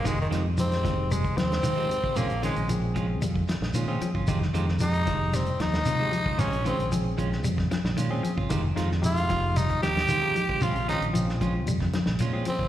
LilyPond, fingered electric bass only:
\new Staff \with { instrumentName = "Fingered electric bass" } { \clef bass \time 4/4 \key bes \dorian \tempo 4 = 114 f,,8 f,4 f,,4 ees,8 r4 | bes,,16 bes,,8 bes,,4~ bes,,16 f,8 r16 bes,,16 bes,8 r16 aes,,16 | f,,8 f,4 f,,4 ees,8 r4 | bes,,16 bes,,8 bes,,4~ bes,,16 f,8 r16 bes,,16 bes,8 r16 aes,,16 |
f,,8 f,4 f,,4 ees,8 r4 | bes,,16 bes,,8 bes,,4~ bes,,16 f,8 r16 bes,,16 bes,8 r16 aes,,16 | }